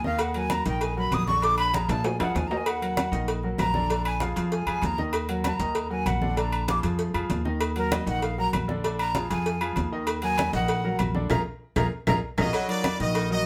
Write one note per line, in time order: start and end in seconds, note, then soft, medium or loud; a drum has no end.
0.00 0.60 D#2 loud
0.04 0.29 D#3 medium
0.04 0.30 D#4 medium
0.04 0.30 D#5 medium
0.04 0.23 F5 loud
0.04 high conga medium
0.19 0.36 F#5 medium
0.19 cowbell loud
0.19 high conga soft
0.19 low agogo loud
0.34 0.60 F#3 medium
0.34 0.60 F#4 medium
0.34 0.61 A#4 medium
0.34 0.53 G#5 loud
0.34 high conga soft
0.34 low agogo medium
0.50 0.67 A#5 medium
0.50 cowbell medium
0.50 high conga medium
0.50 low agogo loud
0.66 1.09 A#1 loud
0.66 0.91 D#3 medium
0.66 0.91 D#4 medium
0.66 0.92 D#5 medium
0.66 0.84 G5 medium
0.66 cowbell medium
0.66 high conga soft
0.81 0.97 G#5 medium
0.81 cowbell loud
0.81 high conga soft
0.81 low agogo medium
0.97 1.22 F#3 medium
0.97 1.22 F#4 medium
0.97 1.22 A#4 medium
0.97 1.15 B5 loud
0.97 high conga soft
1.12 1.84 A#1 loud
1.12 1.27 D#6 loud
1.12 cowbell medium
1.12 high conga medium
1.12 low agogo loud
1.27 1.40 D3 medium
1.27 1.40 D4 medium
1.27 1.40 D5 medium
1.27 1.45 C#6 loud
1.27 high conga medium
1.42 1.68 D3 medium
1.42 1.68 D4 medium
1.42 1.68 D5 medium
1.42 1.58 D6 loud
1.42 cowbell loud
1.42 low agogo medium
1.58 1.76 B5 loud
1.58 high conga soft
1.58 low agogo loud
1.72 1.86 F3 medium
1.72 1.86 F4 medium
1.72 1.86 G#4 medium
1.72 1.92 A#5 medium
1.72 cowbell medium
1.72 high conga loud
1.72 low agogo medium
1.88 2.18 A#2 loud
1.88 2.14 F3 medium
1.88 2.14 F4 medium
1.88 2.14 G#4 medium
1.88 2.07 A5 loud
1.88 cowbell medium
1.88 high timbale medium
1.88 low agogo medium
2.04 2.20 G#5 medium
2.04 cowbell loud
2.04 high conga soft
2.04 low timbale loud
2.19 2.34 F2 medium
2.19 2.45 F3 medium
2.19 2.45 F4 medium
2.19 2.45 G#4 medium
2.19 2.38 F#5 medium
2.19 high conga soft
2.19 high timbale loud
2.19 low agogo loud
2.35 3.07 D#2 medium
2.35 2.49 G#5 medium
2.35 cowbell medium
2.35 high conga medium
2.35 low timbale medium
2.35 low agogo medium
2.47 2.76 D#3 medium
2.47 2.76 D#4 medium
2.47 2.76 D#5 medium
2.47 2.59 A#5 medium
2.47 low timbale medium
2.57 2.69 G#5 medium
2.66 3.29 F#5 medium
2.66 cowbell loud
2.66 high conga soft
2.66 low agogo loud
2.66 claves medium
2.82 3.07 F#3 medium
2.82 3.07 F#4 medium
2.82 3.08 A#4 medium
2.82 high conga soft
2.82 low agogo medium
2.97 cowbell medium
2.97 high conga loud
2.97 low agogo loud
2.97 claves medium
3.12 3.55 A#1 medium
3.12 3.38 D#3 medium
3.12 3.38 D#4 medium
3.12 3.38 D#5 medium
3.12 cowbell medium
3.12 high conga soft
3.28 cowbell loud
3.28 high conga soft
3.28 low agogo medium
3.43 3.69 F#3 medium
3.43 3.69 F#4 medium
3.43 3.69 A#4 medium
3.43 high conga soft
3.58 4.31 A#1 medium
3.58 4.03 A#5 loud
3.58 cowbell medium
3.58 high conga medium
3.58 low timbale medium
3.58 low agogo loud
3.58 claves medium
3.74 3.87 D3 medium
3.74 3.87 D4 medium
3.74 3.87 D5 medium
3.74 high conga medium
3.90 4.16 D3 medium
3.90 4.16 D4 medium
3.90 4.16 D5 medium
3.90 cowbell loud
3.90 high conga soft
3.90 low agogo medium
4.05 4.24 G#5 loud
4.05 high conga soft
4.05 low agogo loud
4.05 claves medium
4.20 4.34 F3 medium
4.20 4.34 F4 medium
4.20 4.34 G#4 medium
4.20 4.55 F5 medium
4.20 cowbell medium
4.20 high conga loud
4.20 low agogo medium
4.36 4.65 F2 loud
4.36 4.62 F3 medium
4.36 4.62 F4 medium
4.36 4.63 G#4 medium
4.36 cowbell medium
4.36 low agogo medium
4.52 4.87 G#5 medium
4.52 cowbell loud
4.52 high conga soft
4.66 4.81 F2 medium
4.66 4.93 F3 medium
4.66 4.93 F4 medium
4.66 4.93 G#4 medium
4.66 high conga soft
4.66 low agogo loud
4.66 claves medium
4.82 5.54 D#2 loud
4.82 5.00 A#5 loud
4.82 cowbell medium
4.82 high conga medium
4.82 low agogo medium
4.98 5.24 D#3 medium
4.98 5.24 D#4 medium
4.98 5.24 D#5 loud
4.98 high conga medium
5.13 cowbell loud
5.13 low agogo loud
5.13 claves medium
5.29 5.54 F#3 medium
5.29 5.55 F#4 medium
5.29 5.55 A#4 medium
5.29 high conga soft
5.29 low agogo medium
5.44 5.89 A#5 medium
5.44 cowbell medium
5.44 high conga loud
5.44 low agogo loud
5.44 claves medium
5.59 6.03 D#2 loud
5.59 5.85 D#3 medium
5.59 5.85 D#4 medium
5.59 5.86 D#5 medium
5.59 cowbell medium
5.59 high conga soft
5.75 cowbell loud
5.75 high conga soft
5.75 low agogo medium
5.90 6.16 F#3 medium
5.90 6.16 F#4 medium
5.90 6.16 A#4 medium
5.90 6.09 G#5 loud
5.90 high conga soft
6.06 6.78 A#1 loud
6.06 6.40 F#5 medium
6.06 cowbell medium
6.06 high conga medium
6.06 low agogo loud
6.06 claves medium
6.22 6.34 D3 medium
6.22 6.35 D4 medium
6.22 6.35 D5 medium
6.22 high conga medium
6.36 6.62 D3 medium
6.36 6.62 D4 medium
6.36 6.62 D5 medium
6.36 6.69 A#5 medium
6.36 cowbell loud
6.36 high conga soft
6.36 low agogo medium
6.52 high conga soft
6.52 low agogo loud
6.52 claves medium
6.68 6.80 F3 medium
6.68 6.81 F4 medium
6.68 6.81 G#4 medium
6.68 6.79 D6 medium
6.68 cowbell medium
6.68 high conga loud
6.68 low agogo medium
6.83 7.12 F2 medium
6.83 7.09 F3 medium
6.83 7.09 F4 medium
6.83 7.09 G#4 medium
6.83 cowbell medium
6.83 low agogo medium
6.99 cowbell loud
6.99 high conga soft
7.14 7.29 F2 medium
7.14 7.39 F3 medium
7.14 7.39 F4 medium
7.14 7.40 G#4 medium
7.14 high conga soft
7.14 low agogo loud
7.14 claves medium
7.30 8.01 D#2 loud
7.30 cowbell medium
7.30 high conga medium
7.30 low agogo medium
7.45 7.70 D#3 medium
7.45 7.71 D#4 medium
7.45 7.71 D#5 medium
7.45 high conga medium
7.61 cowbell loud
7.61 high conga soft
7.61 low agogo loud
7.61 claves medium
7.76 8.01 F#3 medium
7.76 8.01 F#4 medium
7.76 8.02 A#4 medium
7.76 7.95 A#4 loud
7.76 high conga soft
7.76 low agogo medium
7.92 8.07 D#5 medium
7.92 cowbell medium
7.92 high conga loud
7.92 low agogo loud
7.92 claves medium
8.06 8.50 A#1 loud
8.06 8.32 D#3 medium
8.06 8.32 D#4 medium
8.06 8.33 D#5 medium
8.06 8.25 F#5 loud
8.06 cowbell medium
8.06 high conga soft
8.22 8.39 F5 medium
8.22 cowbell loud
8.22 high conga soft
8.22 low agogo medium
8.38 8.63 F#3 medium
8.38 8.63 F#4 medium
8.38 8.63 A#4 medium
8.38 8.48 A#5 loud
8.38 high conga soft
8.53 9.25 A#1 medium
8.53 cowbell medium
8.53 high conga medium
8.53 low agogo loud
8.53 claves medium
8.68 8.81 D3 loud
8.68 8.81 D4 medium
8.68 8.81 D5 medium
8.68 high conga medium
8.84 9.09 D3 medium
8.84 9.10 D4 medium
8.84 9.10 D5 medium
8.84 cowbell loud
8.84 high conga soft
8.84 low agogo medium
8.99 9.29 A#5 loud
8.99 high conga soft
8.99 low agogo loud
8.99 claves medium
9.14 9.27 F3 medium
9.14 9.28 F4 medium
9.14 9.28 G#4 medium
9.14 cowbell medium
9.14 high conga loud
9.14 low agogo medium
9.29 9.73 F2 loud
9.29 9.55 F3 medium
9.29 9.55 F4 medium
9.29 9.55 G#4 medium
9.29 9.74 G#5 loud
9.29 cowbell medium
9.29 low agogo medium
9.46 cowbell loud
9.46 high conga soft
9.61 9.86 F3 medium
9.61 9.86 F4 medium
9.61 9.87 G#4 medium
9.61 high conga soft
9.61 low agogo loud
9.61 claves medium
9.76 10.48 D#2 loud
9.76 cowbell medium
9.76 high conga medium
9.76 low agogo medium
9.92 10.17 D#3 medium
9.92 10.17 D#4 medium
9.92 10.18 D#5 medium
10.07 cowbell loud
10.07 high conga soft
10.07 low agogo loud
10.07 claves medium
10.22 10.48 F#3 medium
10.22 10.48 F#4 medium
10.22 10.48 A#4 medium
10.22 10.52 G#5 loud
10.22 high conga soft
10.22 low agogo medium
10.38 cowbell medium
10.38 high conga loud
10.38 low agogo loud
10.38 claves medium
10.53 10.96 A#1 loud
10.53 10.78 D#3 medium
10.53 10.79 D#4 medium
10.53 10.79 D#5 medium
10.53 10.97 F#5 loud
10.53 cowbell medium
10.68 cowbell loud
10.68 high conga soft
10.68 low agogo medium
10.84 11.09 F#3 medium
10.84 11.10 F#4 medium
10.84 11.10 A#4 medium
10.84 high conga soft
10.99 11.28 A#1 loud
10.99 cowbell medium
10.99 high conga medium
10.99 low agogo loud
10.99 claves medium
11.15 11.27 D3 medium
11.15 11.27 D4 medium
11.15 11.28 D5 medium
11.15 high conga medium
11.30 11.42 A#1 loud
11.30 11.40 F4 loud
11.30 11.40 G#4 loud
11.30 11.40 A#4 loud
11.30 11.41 A#5 loud
11.30 cowbell loud
11.30 low conga loud
11.30 high timbale loud
11.30 claves loud
11.76 11.88 A#1 loud
11.76 11.86 F4 loud
11.76 11.87 G#4 loud
11.76 11.87 A#4 medium
11.76 11.87 A#5 loud
11.76 cowbell loud
11.76 low conga loud
11.76 high timbale loud
11.76 claves loud
12.07 12.19 A#1 loud
12.07 12.17 F4 loud
12.07 12.17 G#4 loud
12.07 12.17 A#4 loud
12.07 12.17 A#5 loud
12.07 cowbell medium
12.07 low conga loud
12.07 high timbale loud
12.07 claves loud
12.38 12.50 A#1 loud
12.38 12.48 F4 loud
12.38 12.68 F#4 medium
12.38 12.48 G#4 loud
12.38 12.48 A#4 loud
12.38 12.68 D#5 loud
12.38 12.48 A#5 loud
12.38 cowbell loud
12.38 low conga loud
12.38 high timbale loud
12.38 claves loud
12.53 12.88 F#3 loud
12.53 cowbell loud
12.53 high conga soft
12.53 low agogo loud
12.53 claves medium
12.68 12.94 F#3 medium
12.68 12.94 D#4 medium
12.68 12.99 F4 medium
12.68 12.94 A#4 medium
12.68 12.98 D5 loud
12.68 high conga soft
12.68 low agogo medium
12.84 cowbell medium
12.84 high conga loud
12.84 low agogo loud
12.84 claves medium
13.00 13.43 A#1 loud
13.00 13.25 D#3 medium
13.00 13.25 D#4 medium
13.00 13.29 F#4 medium
13.00 13.25 D#5 medium
13.00 13.29 D#5 loud
13.00 cowbell medium
13.00 high conga soft
13.14 13.39 D#3 medium
13.14 cowbell loud
13.14 high conga soft
13.14 low agogo medium
13.30 13.46 F#3 medium
13.30 13.46 F#4 medium
13.30 13.46 A#4 medium
13.30 13.46 D#5 loud
13.30 high conga soft